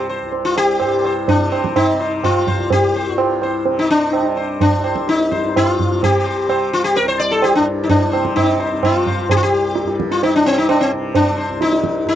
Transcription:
0.00 0.22 C2 medium
0.00 0.80 G2 medium
0.00 1.37 C3 medium
0.09 0.31 C5 soft
0.22 2.50 C2 medium
0.32 tabla tin medium
0.45 0.57 F4 medium
0.56 1.13 G4 loud
0.56 tabla na medium
0.80 3.08 G2 medium
0.80 1.03 C5 soft
0.80 tabla na medium
1.04 1.27 C5 soft
1.04 tabla na medium
1.28 1.76 D4 medium
1.28 tabla tin medium
1.28 tabla ge medium
1.37 1.94 C3 medium
1.52 1.74 C5 soft
1.52 tabla na medium
1.64 tabla ke medium
1.76 2.24 D#4 medium
1.76 tabla na medium
1.76 tabla ge medium
1.94 3.66 C3 medium
2.00 2.22 C5 soft
2.00 tabla te medium
2.24 2.72 F4 medium
2.24 tabla na medium
2.24 tabla ge medium
2.47 4.78 C2 medium
2.47 2.70 C5 soft
2.47 tabla ge medium
2.70 3.15 G4 medium
2.70 tabla tin medium
2.70 tabla ge medium
2.96 3.17 C5 soft
3.09 5.34 G2 medium
3.15 3.39 F4 medium
3.15 tabla na medium
3.42 3.65 C5 soft
3.42 tabla na medium
3.65 4.22 C3 medium
3.65 tabla tin medium
3.79 3.89 D#4 medium
3.90 4.45 D4 medium
4.13 tabla na medium
4.22 5.90 C3 medium
4.37 4.59 C5 soft
4.61 5.08 D4 medium
4.61 tabla tin medium
4.61 tabla ge medium
4.78 7.02 C2 medium
4.84 5.06 C5 soft
4.84 tabla na medium
4.96 tabla ke medium
5.08 5.56 D#4 medium
5.08 tabla te medium
5.19 tabla te medium
5.31 7.58 G2 medium
5.31 5.53 C5 soft
5.31 tabla ke medium
5.44 tabla te medium
5.56 6.03 F4 medium
5.56 tabla na medium
5.56 tabla ge medium
5.79 tabla ge medium
5.90 6.47 C3 medium
6.03 6.69 G4 medium
6.03 tabla tin medium
6.03 tabla ge medium
6.25 6.47 C5 soft
6.47 8.15 C3 medium
6.47 6.71 C5 soft
6.47 tabla na medium
6.73 6.84 F4 medium
6.84 6.96 G4 medium
6.96 7.08 A#4 medium
6.96 tabla tin medium
7.02 9.27 C2 medium
7.08 7.20 C5 medium
7.20 7.31 D5 medium
7.31 7.43 A4 medium
7.42 7.55 G4 medium
7.42 tabla na medium
7.55 9.84 G2 medium
7.55 7.66 D4 medium
7.83 7.89 D#4 medium
7.89 8.35 D4 medium
7.89 tabla tin medium
7.89 tabla ge medium
8.12 8.72 C3 medium
8.12 8.34 C5 soft
8.12 tabla na medium
8.25 tabla ke medium
8.36 8.79 D#4 medium
8.36 tabla na medium
8.36 tabla ge medium
8.60 8.81 C5 soft
8.60 tabla te medium
8.72 10.39 C3 medium
8.83 9.27 F4 medium
8.83 tabla na medium
8.83 tabla ge medium
9.06 9.28 C5 soft
9.06 tabla ge medium
9.28 11.49 C2 medium
9.28 9.36 G4 loud
9.28 tabla tin loud
9.28 tabla ge medium
9.37 9.42 F4 medium
9.43 9.96 G4 loud
9.75 tabla te medium
9.84 12.04 G2 medium
9.84 tabla te medium
10.00 tabla ke medium
10.11 10.23 F4 medium
10.11 tabla te medium
10.23 10.35 D#4 medium
10.23 tabla tin medium
10.36 10.93 C3 medium
10.36 10.46 D4 medium
10.46 10.57 C4 medium
10.46 tabla na medium
10.58 10.68 D#4 medium
10.69 10.81 D4 medium
10.69 tabla na medium
10.81 10.91 C4 medium
10.93 12.15 C3 medium
11.15 11.58 D4 medium
11.15 tabla tin medium
11.15 tabla ge medium
11.38 11.59 C5 soft
11.50 12.15 C2 medium
11.61 12.08 D#4 medium
11.61 tabla te medium
11.73 tabla te medium
11.84 tabla ke medium
11.95 tabla te medium
12.05 12.15 G2 medium
12.05 12.15 F4 medium
12.05 tabla te medium

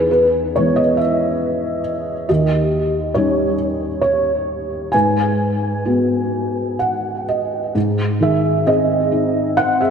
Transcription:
0.00 2.25 E2 soft
0.00 0.95 D#4 soft
0.00 2.31 G#4 medium
0.00 0.11 B4 medium
0.11 0.52 B4 medium
0.55 2.26 E3 soft
0.55 2.26 G#3 soft
0.55 2.25 B3 soft
0.55 0.78 C#5 medium
0.76 0.99 D#5 medium
0.97 1.81 E5 medium
2.29 4.89 D#2 soft
2.29 3.55 G4 soft
2.29 3.11 D#5 medium
3.15 4.89 G3 soft
3.15 4.90 C#4 soft
3.15 4.90 D#4 soft
3.15 3.99 C#5 medium
4.02 4.95 C#5 medium
4.92 7.72 G#2 soft
4.92 6.76 B4 soft
4.92 6.75 G#5 medium
5.85 7.72 G#3 soft
5.85 7.72 B3 soft
5.85 7.72 F#4 soft
6.79 7.25 F#5 soft
7.29 7.72 D#5 soft
7.75 9.90 G#2 soft
8.20 9.90 D#3 soft
8.20 8.64 G#4 soft
8.20 8.68 E5 medium
8.67 9.56 C4 soft
8.67 9.53 G#4 medium
8.67 9.60 D#5 medium
9.12 9.90 D#4 soft
9.57 9.90 C4 soft
9.57 9.79 C5 medium
9.57 9.80 F#5 medium
9.80 9.90 G#4 medium
9.80 9.90 E5 medium

